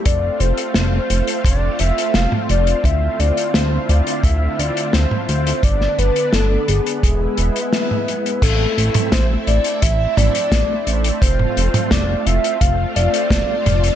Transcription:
0.00 5.60 A3 medium
0.05 0.30 F1 loud
0.05 5.60 C4 medium
0.05 5.60 F4 medium
0.05 0.42 D5 loud
0.05 kick loud
0.05 closed hi-hat medium
0.40 0.53 F1 medium
0.40 1.47 C5 loud
0.40 closed hi-hat medium
0.57 closed hi-hat medium
0.74 1.00 F1 medium
0.74 snare loud
0.74 closed hi-hat loud
1.10 1.22 F1 medium
1.10 closed hi-hat medium
1.27 closed hi-hat medium
1.45 1.69 F1 loud
1.45 1.82 D5 loud
1.45 kick loud
1.45 closed hi-hat loud
1.79 1.92 F1 medium
1.79 2.14 E5 loud
1.79 closed hi-hat medium
1.98 closed hi-hat medium
2.14 2.27 F1 medium
2.14 2.29 F5 loud
2.14 snare loud
2.14 closed hi-hat medium
2.32 mid tom medium
2.49 2.74 F1 medium
2.49 2.86 D5 loud
2.49 closed hi-hat medium
2.67 closed hi-hat medium
2.84 3.09 D2 medium
2.84 5.61 D3 medium
2.84 5.61 E4 medium
2.84 3.21 E5 loud
2.84 kick loud
2.84 closed hi-hat medium
3.19 3.32 D2 medium
3.19 3.56 D5 loud
3.19 closed hi-hat medium
3.37 closed hi-hat medium
3.54 3.79 D2 medium
3.54 3.89 C5 loud
3.54 snare loud
3.54 closed hi-hat medium
3.89 4.01 D2 medium
3.89 4.26 D5 loud
3.89 closed hi-hat medium
4.07 closed hi-hat medium
4.24 4.48 D2 loud
4.24 4.61 E5 loud
4.24 kick loud
4.24 closed hi-hat medium
4.59 4.71 D2 medium
4.59 4.96 D5 loud
4.59 closed hi-hat medium
4.77 closed hi-hat medium
4.93 5.06 D2 medium
4.93 5.28 C5 loud
4.93 snare loud
4.93 closed hi-hat medium
5.11 mid tom medium
5.29 5.53 D2 medium
5.29 5.65 C5 loud
5.29 closed hi-hat medium
5.47 closed hi-hat medium
5.63 5.88 G1 loud
5.63 7.02 D3 medium
5.63 8.40 B3 medium
5.63 7.02 D4 medium
5.63 6.00 D5 loud
5.63 kick loud
5.63 closed hi-hat medium
5.81 snare soft
5.98 6.11 G1 medium
5.98 6.35 B4 loud
5.98 closed hi-hat medium
6.16 closed hi-hat medium
6.33 6.58 G1 medium
6.33 6.70 A4 medium
6.33 snare loud
6.33 closed hi-hat loud
6.68 6.81 G1 medium
6.68 7.37 G#4 medium
6.68 closed hi-hat medium
6.86 closed hi-hat medium
7.03 7.28 E1 medium
7.03 8.41 G#3 medium
7.03 8.41 E4 medium
7.03 kick loud
7.03 closed hi-hat medium
7.37 7.50 E1 medium
7.37 8.44 B4 loud
7.37 closed hi-hat medium
7.56 closed hi-hat medium
7.73 snare loud
7.73 closed hi-hat medium
7.91 mid tom medium
8.08 closed hi-hat medium
8.26 closed hi-hat medium
8.42 8.67 A1 loud
8.42 13.95 A3 medium
8.42 13.95 C4 medium
8.42 11.19 E4 medium
8.42 9.12 A4 loud
8.42 kick loud
8.42 closed hi-hat loud
8.42 crash loud
8.78 8.90 A1 medium
8.78 closed hi-hat medium
8.94 closed hi-hat medium
8.94 mid tom medium
9.12 9.37 A1 medium
9.12 9.26 C5 medium
9.12 kick loud
9.12 snare loud
9.12 closed hi-hat loud
9.47 9.60 A1 medium
9.47 9.84 D5 loud
9.47 closed hi-hat medium
9.64 closed hi-hat medium
9.82 10.07 A1 loud
9.82 10.18 E5 loud
9.82 kick loud
9.82 closed hi-hat loud
10.17 10.29 A1 medium
10.17 11.21 D5 loud
10.17 closed hi-hat medium
10.17 mid tom medium
10.35 closed hi-hat medium
10.52 10.64 A1 medium
10.52 kick loud
10.52 snare loud
10.52 closed hi-hat loud
10.87 11.11 A1 medium
10.87 closed hi-hat medium
11.04 closed hi-hat medium
11.22 11.46 F1 loud
11.22 13.95 F4 medium
11.22 11.93 C5 loud
11.22 kick loud
11.22 closed hi-hat loud
11.39 mid tom medium
11.57 11.69 F1 medium
11.57 closed hi-hat medium
11.74 closed hi-hat medium
11.74 mid tom medium
11.91 12.16 F1 medium
11.91 12.28 D5 loud
11.91 kick loud
11.91 snare loud
11.91 closed hi-hat loud
12.26 12.39 F1 medium
12.26 12.63 E5 loud
12.26 closed hi-hat medium
12.44 closed hi-hat medium
12.61 12.86 F1 loud
12.61 12.97 F5 loud
12.61 kick loud
12.61 closed hi-hat loud
12.96 13.08 F1 medium
12.96 13.95 D5 loud
12.96 closed hi-hat medium
13.14 closed hi-hat medium
13.30 13.43 F1 medium
13.30 kick loud
13.30 snare loud
13.30 closed hi-hat loud
13.66 13.90 F1 medium
13.66 closed hi-hat medium
13.66 mid tom medium
13.84 closed hi-hat medium

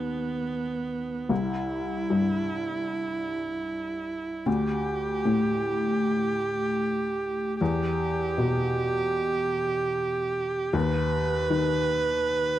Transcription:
0.00 1.26 D#2 soft
0.00 1.30 D#3 soft
0.00 1.31 B3 soft
1.29 4.42 C2 soft
1.29 4.48 E4 soft
2.10 4.47 G2 soft
4.46 7.56 D2 soft
4.46 7.60 G4 medium
5.25 7.60 A2 soft
7.61 10.70 E2 medium
7.61 10.75 G4 medium
8.38 10.74 B2 soft
10.73 12.59 D#2 medium
10.73 12.59 B4 medium
11.50 12.59 D#3 soft

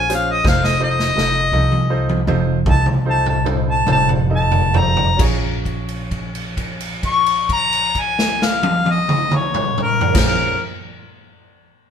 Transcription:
0.00 0.40 A#1 medium
0.00 0.10 G#5 medium
0.09 0.35 C#4 medium
0.09 0.36 F4 medium
0.09 0.36 G#4 soft
0.09 0.36 C5 medium
0.09 snare soft
0.09 closed hi-hat medium
0.15 0.33 F5 medium
0.32 0.46 D#5 medium
0.44 1.12 F1 medium
0.44 0.71 D#4 medium
0.44 0.71 F4 medium
0.44 0.71 A4 medium
0.44 0.71 C5 medium
0.44 kick loud
0.44 snare medium
0.48 0.67 F5 medium
0.64 0.80 D#5 loud
0.64 snare medium
0.80 1.07 D#4 medium
0.80 1.07 F4 soft
0.80 1.07 A4 soft
0.80 1.07 C5 medium
0.84 2.26 D#5 loud
0.99 snare medium
1.16 1.50 F1 medium
1.16 1.44 D#4 medium
1.16 1.44 F4 medium
1.16 1.44 A4 medium
1.16 1.44 D#5 medium
1.16 snare medium
1.52 2.23 C2 medium
1.52 1.81 D#4 medium
1.52 1.81 F4 soft
1.52 1.81 A4 medium
1.52 1.81 D#5 medium
1.52 high tom medium
1.72 high tom medium
1.90 2.18 D#4 medium
1.90 2.18 F4 medium
1.90 2.18 A4 medium
1.90 2.18 C5 medium
2.09 high tom medium
2.27 2.63 F1 loud
2.27 2.56 D#4 medium
2.27 2.56 F4 medium
2.27 2.56 A4 medium
2.27 2.57 C5 medium
2.27 high tom medium
2.66 3.84 C2 medium
2.66 2.96 D#4 medium
2.66 2.96 F4 soft
2.66 2.96 A4 soft
2.66 2.96 D#5 medium
2.66 kick loud
2.66 mid tom medium
2.70 2.87 A5 loud
2.86 mid tom medium
3.05 3.36 D#4 medium
3.05 3.36 F4 medium
3.05 3.36 A4 medium
3.05 3.36 C5 medium
3.10 3.27 A5 loud
3.26 3.47 A5 medium
3.26 mid tom medium
3.44 3.76 D#4 soft
3.44 3.77 F4 soft
3.44 3.77 A4 soft
3.44 3.77 C5 medium
3.44 mid tom medium
3.71 3.88 A5 medium
3.86 5.15 F1 loud
3.86 4.19 D#4 medium
3.86 4.19 F4 soft
3.86 4.19 A4 medium
3.86 4.19 C5 medium
3.86 mid tom medium
3.92 4.10 A5 loud
4.09 floor tom medium
4.30 4.63 D#4 medium
4.30 4.63 F4 medium
4.30 4.63 A4 soft
4.30 4.63 D#5 medium
4.36 4.81 A5 medium
4.51 floor tom medium
4.73 5.07 D#4 medium
4.73 5.08 F4 soft
4.73 5.08 A4 soft
4.73 5.08 C5 medium
4.73 floor tom medium
4.79 5.21 A#5 loud
4.97 floor tom medium
5.16 10.00 A#1 medium
5.16 9.99 C#4 medium
5.16 10.00 F4 medium
5.16 10.00 G#4 medium
5.16 kick loud
5.16 crash medium
5.21 10.01 C#5 medium
5.65 kick soft
5.65 crash soft
5.88 crash soft
6.11 kick medium
6.11 crash soft
6.35 crash soft
6.57 kick medium
6.57 crash soft
6.80 crash soft
7.03 7.49 C#6 medium
7.03 kick medium
7.03 crash soft
7.26 crash medium
7.49 8.01 A#5 medium
7.49 kick medium
7.49 crash soft
7.73 crash soft
7.95 kick medium
7.95 crash soft
7.99 8.46 G#5 medium
8.19 snare medium
8.42 8.93 F5 medium
8.42 snare medium
8.63 high tom loud
8.86 high tom medium
8.91 9.37 D#5 medium
9.09 mid tom medium
9.31 9.79 C#5 medium
9.31 mid tom medium
9.54 mid tom loud
9.78 mid tom medium
9.82 10.25 A#4 medium
10.01 floor tom medium
10.13 10.54 A#1 medium
10.13 10.52 C#4 medium
10.13 10.53 F4 medium
10.13 10.54 G#4 medium
10.13 kick loud
10.13 snare medium
10.13 crash loud
10.17 10.55 C5 medium
10.27 10.66 A#4 medium

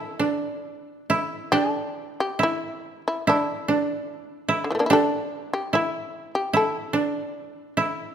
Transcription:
0.00 0.19 D4 medium
0.00 1.09 E4 medium
0.00 1.05 A4 medium
0.19 1.52 D4 soft
1.10 2.39 E4 medium
1.52 3.68 D4 medium
1.52 1.70 G4 medium
1.70 2.13 A4 medium
2.20 2.39 G4 medium
2.39 3.27 E4 medium
2.43 3.01 E4 medium
3.08 3.25 E4 medium
3.27 4.46 D4 medium
3.27 4.48 E4 medium
3.68 4.90 D4 soft
4.49 5.73 E4 medium
4.64 4.70 D3 soft
4.70 4.81 E3 soft
4.70 4.74 G3 soft
4.75 4.79 A3 soft
4.79 4.90 A#3 soft
4.79 4.86 D4 soft
4.86 6.93 D4 medium
4.86 4.93 E4 medium
4.91 5.01 G4 medium
4.91 5.49 A4 medium
5.53 5.71 G4 medium
5.73 6.53 E4 medium
5.73 6.31 E4 medium
6.35 6.53 G4 medium
6.53 7.77 E4 medium
6.53 7.73 A4 medium
6.93 8.15 D4 medium
7.77 8.15 E4 medium

